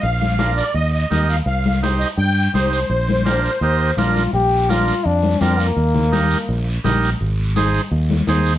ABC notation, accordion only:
X:1
M:4/4
L:1/8
Q:1/4=167
K:Bbmix
V:1 name="Accordion"
f3 d e e e f | f2 z e g2 c2- | c6 z2 | z8 |
z8 | z8 |]